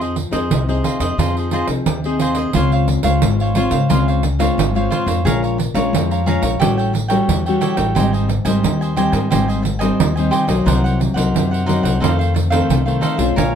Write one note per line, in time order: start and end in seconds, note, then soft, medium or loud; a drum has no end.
0.00 0.27 F2 medium
0.00 0.48 F3 soft
0.00 0.15 C4 soft
0.00 0.15 D#4 soft
0.00 0.15 G#4 medium
0.00 0.15 G#4 soft
0.00 0.16 C5 soft
0.00 0.16 D#5 soft
0.00 pandeiro soft
0.16 muted cavaquinho stroke soft
0.16 pandeiro soft
0.31 0.48 F2 medium
0.31 0.61 C4 soft
0.31 0.61 D#4 medium
0.31 0.61 G#4 medium
0.31 0.67 G#4 soft
0.31 0.66 C5 medium
0.31 0.66 D#5 medium
0.31 pandeiro medium
0.50 0.80 C2 medium
0.50 1.15 C3 medium
0.50 pandeiro medium
0.68 1.14 C4 medium
0.68 1.14 D#4 medium
0.68 1.14 G#4 medium
0.68 0.83 G#4 soft
0.68 0.84 C5 soft
0.68 0.84 D#5 soft
0.68 pandeiro soft
0.84 1.00 F4 soft
0.84 1.00 G#4 soft
0.84 1.00 C5 soft
0.84 0.99 D#5 soft
0.84 pandeiro medium
1.00 1.15 F2 medium
1.00 1.18 G#4 medium
1.00 1.17 C5 medium
1.00 1.17 D#5 medium
1.00 pandeiro medium
1.18 1.62 F2 medium
1.18 1.83 F3 medium
1.18 1.47 C4 soft
1.18 1.48 D#4 medium
1.18 1.34 F4 medium
1.18 1.48 G#4 medium
1.18 1.35 G#4 medium
1.18 1.35 C5 medium
1.18 1.36 D#5 medium
1.18 pandeiro medium
1.37 1.52 G#4 soft
1.37 1.52 C5 soft
1.37 1.52 D#5 soft
1.37 pandeiro soft
1.51 1.98 C4 soft
1.51 1.98 D#4 soft
1.51 1.67 F4 medium
1.51 1.98 G#4 medium
1.51 1.68 G#4 medium
1.51 1.68 C5 medium
1.51 1.68 D#5 medium
1.51 pandeiro medium
1.68 1.83 C2 medium
1.68 muted cavaquinho stroke soft
1.68 pandeiro medium
1.86 2.44 D#2 medium
1.86 2.51 C3 soft
1.86 pandeiro medium
2.04 2.50 C4 medium
2.04 2.50 D#4 medium
2.04 2.50 G#4 medium
2.04 2.20 G#4 soft
2.04 2.20 C5 soft
2.04 2.20 D#5 soft
2.04 pandeiro soft
2.20 2.36 F4 medium
2.20 2.36 G#4 medium
2.20 2.36 C5 medium
2.20 2.35 D#5 medium
2.20 pandeiro medium
2.35 2.53 G#4 soft
2.35 2.53 C5 soft
2.35 2.52 D#5 soft
2.35 pandeiro medium
2.53 2.98 C#2 loud
2.53 3.19 C#3 soft
2.53 3.00 G#3 soft
2.53 3.00 C4 medium
2.53 2.70 F4 medium
2.53 3.00 F4 medium
2.53 2.70 C5 medium
2.53 2.71 C#5 medium
2.53 2.71 F5 medium
2.53 pandeiro medium
2.72 2.88 C5 soft
2.72 2.87 C#5 soft
2.72 2.88 F5 soft
2.72 pandeiro soft
2.88 muted cavaquinho stroke soft
2.88 pandeiro medium
3.03 3.19 C#2 medium
3.03 3.50 G#3 medium
3.03 3.50 F4 medium
3.03 3.38 C5 soft
3.03 3.38 C#5 medium
3.03 3.37 F5 medium
3.03 pandeiro medium
3.22 3.65 G#1 medium
3.22 3.87 G#2 medium
3.22 pandeiro medium
3.40 3.55 C5 soft
3.40 3.55 C#5 soft
3.40 3.56 F5 soft
3.40 pandeiro soft
3.55 3.76 G#3 medium
3.55 3.76 C4 medium
3.55 3.71 F4 medium
3.55 3.76 F4 medium
3.55 3.72 C5 medium
3.55 3.71 C#5 medium
3.55 3.70 F5 medium
3.55 pandeiro medium
3.71 3.86 C#3 medium
3.71 3.89 C5 soft
3.71 3.88 C#5 soft
3.71 3.88 F5 soft
3.71 pandeiro medium
3.89 4.48 C#2 medium
3.89 4.54 C#3 medium
3.89 4.22 G#3 medium
3.89 4.22 C4 soft
3.89 4.05 F4 medium
3.89 4.22 F4 medium
3.89 4.05 C5 medium
3.89 4.06 C#5 medium
3.89 4.06 F5 medium
3.89 pandeiro medium
4.08 4.23 C5 soft
4.08 4.24 C#5 soft
4.08 4.23 F5 soft
4.08 pandeiro soft
4.23 muted cavaquinho stroke soft
4.23 pandeiro medium
4.39 4.68 G#3 medium
4.39 4.69 C4 medium
4.39 4.69 F4 medium
4.39 4.73 C5 medium
4.39 4.73 C#5 medium
4.39 4.73 F5 medium
4.39 pandeiro medium
4.57 4.87 G#1 medium
4.57 5.22 G#2 soft
4.57 pandeiro medium
4.75 5.20 G#3 medium
4.75 5.20 C4 medium
4.75 5.20 F4 medium
4.75 4.90 C5 soft
4.75 4.90 C#5 soft
4.75 4.91 F5 soft
4.75 pandeiro soft
4.90 5.07 F4 medium
4.90 5.07 C5 medium
4.90 5.06 C#5 medium
4.90 5.05 F5 medium
4.90 pandeiro medium
5.06 5.22 F2 medium
5.06 5.24 C5 soft
5.06 5.24 C#5 soft
5.06 5.23 F5 soft
5.06 pandeiro medium
5.25 5.68 A#1 medium
5.25 5.90 A#2 medium
5.25 5.57 G#3 medium
5.25 5.57 C#4 soft
5.25 5.58 F4 medium
5.25 5.41 G#4 medium
5.25 5.41 C#5 medium
5.25 5.41 F5 medium
5.25 5.41 A#5 medium
5.25 pandeiro medium
5.43 5.57 C#5 soft
5.43 5.58 F5 soft
5.43 5.58 A#5 soft
5.43 pandeiro soft
5.58 muted cavaquinho stroke soft
5.58 pandeiro medium
5.74 5.90 A#1 medium
5.74 6.21 G#3 medium
5.74 6.21 C#4 medium
5.74 6.21 F4 medium
5.74 6.09 C#5 medium
5.74 6.08 F5 medium
5.74 6.08 A#5 medium
5.74 pandeiro medium
5.93 6.36 F2 medium
5.93 6.58 F3 medium
5.93 pandeiro medium
6.11 6.25 C#5 soft
6.11 6.26 F5 soft
6.11 6.26 A#5 soft
6.11 pandeiro soft
6.26 6.55 G#3 medium
6.26 6.56 C#4 medium
6.26 6.56 F4 medium
6.26 6.42 G#4 medium
6.26 6.42 C#5 medium
6.26 6.42 F5 medium
6.26 6.41 A#5 medium
6.26 pandeiro medium
6.42 6.57 A#1 medium
6.42 6.59 C#5 soft
6.42 6.59 F5 soft
6.42 6.58 A#5 soft
6.42 pandeiro medium
6.59 7.19 A1 medium
6.59 7.26 A2 soft
6.59 6.93 G3 medium
6.59 6.93 C#4 medium
6.59 6.93 F#4 medium
6.59 6.76 G4 medium
6.59 6.76 A4 medium
6.59 6.77 C#5 medium
6.59 6.76 G5 medium
6.59 pandeiro medium
6.77 6.92 A4 soft
6.77 6.93 C#5 soft
6.77 6.93 G5 soft
6.77 pandeiro soft
6.93 muted cavaquinho stroke soft
6.93 pandeiro medium
7.08 7.40 G3 medium
7.08 7.40 C#4 medium
7.08 7.40 F#4 medium
7.08 7.43 A4 soft
7.08 7.43 C#5 medium
7.08 7.43 G5 medium
7.08 pandeiro medium
7.28 7.57 E2 medium
7.28 7.94 E3 soft
7.28 pandeiro medium
7.46 7.92 G3 medium
7.46 7.92 C#4 medium
7.46 7.93 F#4 medium
7.46 7.60 A4 soft
7.46 7.60 C#5 soft
7.46 7.61 G5 soft
7.46 pandeiro soft
7.61 7.77 G4 medium
7.61 7.77 A4 medium
7.61 7.76 C#5 medium
7.61 7.76 G5 medium
7.61 pandeiro medium
7.77 7.93 A1 medium
7.77 7.94 A4 soft
7.77 7.94 C#5 soft
7.77 7.94 G5 soft
7.77 pandeiro medium
7.95 8.39 G#1 loud
7.95 8.61 G#2 medium
7.95 8.29 G3 medium
7.95 8.29 C4 medium
7.95 8.29 D#4 medium
7.95 8.11 G4 medium
7.95 8.12 C5 medium
7.95 8.12 D#5 medium
7.95 8.12 G#5 medium
7.95 pandeiro medium
8.13 8.28 C5 soft
8.13 8.28 D#5 soft
8.13 8.28 G#5 medium
8.13 pandeiro soft
8.29 muted cavaquinho stroke soft
8.29 pandeiro medium
8.45 8.60 G#1 medium
8.45 8.92 G3 medium
8.45 8.92 C4 medium
8.45 8.92 D#4 medium
8.45 8.79 C5 medium
8.45 8.79 D#5 medium
8.45 8.78 G#5 medium
8.45 pandeiro medium
8.63 9.07 D#2 medium
8.63 9.29 D#3 medium
8.63 pandeiro medium
8.81 8.96 C5 soft
8.81 8.96 D#5 soft
8.81 8.97 G#5 medium
8.81 pandeiro soft
8.96 9.26 G3 medium
8.96 9.26 C4 medium
8.96 9.27 D#4 medium
8.96 9.13 G4 medium
8.96 9.12 C5 medium
8.96 9.12 D#5 medium
8.96 9.11 G#5 medium
8.96 pandeiro medium
9.12 9.28 G#2 medium
9.12 9.30 C5 soft
9.12 9.30 D#5 soft
9.12 9.29 G#5 soft
9.12 pandeiro medium
9.30 9.89 G#1 medium
9.30 9.97 G#2 medium
9.30 9.64 G3 medium
9.30 9.64 C4 medium
9.30 9.64 D#4 medium
9.30 9.47 G4 medium
9.30 9.47 C5 medium
9.30 9.47 D#5 medium
9.30 9.47 G#5 medium
9.30 pandeiro medium
9.48 9.62 C5 soft
9.48 9.62 D#5 soft
9.48 9.62 G#5 soft
9.48 pandeiro soft
9.63 muted cavaquinho stroke soft
9.63 pandeiro medium
9.79 10.10 G3 medium
9.79 10.11 C4 medium
9.79 10.11 D#4 medium
9.79 10.14 C5 medium
9.79 10.14 D#5 medium
9.79 10.13 G#5 medium
9.79 pandeiro medium
10.00 10.28 D#2 medium
10.00 10.64 D#3 soft
10.00 pandeiro medium
10.16 10.45 G3 medium
10.16 10.46 C4 medium
10.16 10.46 D#4 medium
10.16 10.30 C5 soft
10.16 10.31 D#5 soft
10.16 10.31 G#5 soft
10.16 pandeiro soft
10.31 10.48 G4 medium
10.31 10.47 C5 medium
10.31 10.47 D#5 medium
10.31 10.46 G#5 medium
10.31 pandeiro medium
10.47 10.63 B1 medium
10.47 11.12 F#3 medium
10.47 11.12 A#3 medium
10.47 11.12 D#4 medium
10.47 10.65 C5 soft
10.47 10.65 D#5 soft
10.47 10.64 G#5 soft
10.47 pandeiro medium
10.66 11.10 C2 loud
10.66 11.31 C3 medium
10.66 10.82 D#4 medium
10.66 10.82 A#4 medium
10.66 10.82 C5 medium
10.66 10.83 F#5 medium
10.66 pandeiro medium
10.84 10.99 A#4 soft
10.84 10.99 C5 soft
10.84 11.00 F#5 soft
10.84 pandeiro soft
11.00 muted cavaquinho stroke soft
11.00 pandeiro medium
11.14 11.31 C2 medium
11.14 11.62 F#3 medium
11.14 11.62 A#3 medium
11.14 11.62 D#4 medium
11.14 11.49 A#4 medium
11.14 11.49 C5 medium
11.14 11.48 F#5 medium
11.14 pandeiro medium
11.34 11.78 F#2 medium
11.34 11.99 C3 medium
11.34 pandeiro medium
11.51 11.65 A#4 soft
11.51 11.66 C5 soft
11.51 11.66 F#5 soft
11.51 pandeiro soft
11.66 11.96 F#3 medium
11.66 11.97 A#3 medium
11.66 11.83 D#4 medium
11.66 11.97 D#4 medium
11.66 11.83 A#4 medium
11.66 11.82 C5 medium
11.66 11.82 F#5 medium
11.66 pandeiro medium
11.83 11.98 C2 medium
11.83 12.00 A#4 soft
11.83 12.00 C5 soft
11.83 12.00 F#5 soft
11.83 pandeiro medium
12.00 12.66 F2 medium
12.00 12.60 F2 medium
12.00 12.47 D#3 soft
12.00 12.48 A3 medium
12.00 12.48 C4 medium
12.00 12.17 D#4 medium
12.00 12.17 A4 medium
12.00 12.18 C5 medium
12.00 12.17 F5 medium
12.00 pandeiro medium
12.19 12.33 A4 soft
12.19 12.33 C5 soft
12.19 12.34 F5 soft
12.19 pandeiro soft
12.34 muted cavaquinho stroke soft
12.34 pandeiro medium
12.50 12.81 D#3 medium
12.50 12.81 A3 medium
12.50 12.81 C4 medium
12.50 12.85 A4 medium
12.50 12.85 C5 medium
12.50 12.84 F5 medium
12.50 pandeiro medium
12.69 12.98 C2 medium
12.69 13.34 C3 soft
12.69 pandeiro medium
12.86 13.15 D#3 medium
12.86 13.15 A3 medium
12.86 13.16 C4 medium
12.86 13.01 A4 soft
12.86 13.01 C5 soft
12.86 13.02 F5 soft
12.86 pandeiro soft
13.01 13.18 D#4 medium
13.01 13.17 A4 medium
13.01 13.17 C5 medium
13.01 13.16 F5 medium
13.01 pandeiro medium
13.17 13.34 B1 medium
13.17 13.55 G#3 medium
13.17 13.55 C#4 medium
13.17 13.55 F4 medium
13.17 13.35 A4 soft
13.17 13.35 C5 soft
13.17 13.35 F5 soft
13.17 pandeiro medium
13.36 13.55 A#1 loud
13.36 13.55 A#2 soft
13.36 13.53 A#4 medium
13.36 13.53 C#5 medium
13.36 13.53 F5 medium
13.36 13.53 G#5 medium
13.36 pandeiro medium